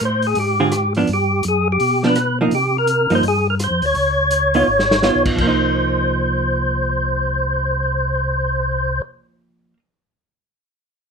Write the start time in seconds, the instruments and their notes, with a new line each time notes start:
0.01 tonewheel organ A2
0.05 tonewheel organ C5
0.22 open hi-hat
0.27 tonewheel organ G#4
0.35 tonewheel organ G#2, open hi-hat
0.40 tonewheel organ G4
0.60 hollow-body jazz guitar D3 C4 F4 G#4
0.72 cross-stick, closed hi-hat
0.95 hollow-body jazz guitar F3 B3 D4, open hi-hat
1.07 tonewheel organ G2, open hi-hat
1.13 tonewheel organ G4
1.43 tonewheel organ F#2, closed hi-hat
1.48 tonewheel organ G#4
1.72 tonewheel organ G4
1.80 tonewheel organ B2, open hi-hat
2.03 hollow-body jazz guitar F3 B3 D4, snare
2.07 tonewheel organ B4
2.16 cross-stick, closed hi-hat
2.41 hollow-body jazz guitar F3 A#3 D#4
2.51 tonewheel organ C3 G4, open hi-hat
2.78 tonewheel organ A#4
2.87 closed hi-hat
3.10 tonewheel organ G2, hollow-body jazz guitar F3 A#3 D#4, open hi-hat
3.15 tonewheel organ C5
3.23 tonewheel organ G2, open hi-hat
3.28 tonewheel organ G#4
3.50 tonewheel organ A#4
3.59 cross-stick, closed hi-hat
3.64 tonewheel organ C5
3.70 tonewheel organ F2
3.82 tonewheel organ D2 C#5, open hi-hat
3.95 tonewheel organ C#2, open hi-hat
4.31 closed hi-hat
4.54 hollow-body jazz guitar B3 D#4 F4, open hi-hat
4.68 tonewheel organ G#1
4.79 snare
4.91 snare
5.03 hollow-body jazz guitar B3 D#4 F4, snare
5.15 tonewheel organ B1
5.25 tonewheel organ A#1, kick, crash
5.35 tonewheel organ C2, hollow-body jazz guitar F3, kick, crash
5.41 hollow-body jazz guitar A#3, tonewheel organ C5
5.47 hollow-body jazz guitar D#4